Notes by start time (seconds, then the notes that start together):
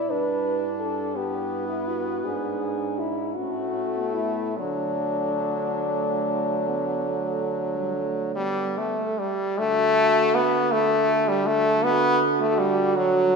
Already playing: E4 D5
0.09 G2 D4 E4 B4
0.80 A4
1.16 B3 E4 G4
1.69 E4
1.88 F#4
2.24 G#2 D4 G#4
2.99 E4
3.35 A2 A3 C#4 F#4
3.97 B3
4.14 E4
4.57 D3 F#3 A3 D4
5.85 A3
6.68 B3
7.10 A3
7.75 G3
7.95 A3
8.35 G3 B3
8.78 A3
8.99 A3
9.19 G3
9.57 D3 A3 F#4
10.35 B3
10.72 A3 A4
11.28 G3
11.47 A3
11.83 B3 F#4
12.40 A3
12.59 G3
12.96 F#3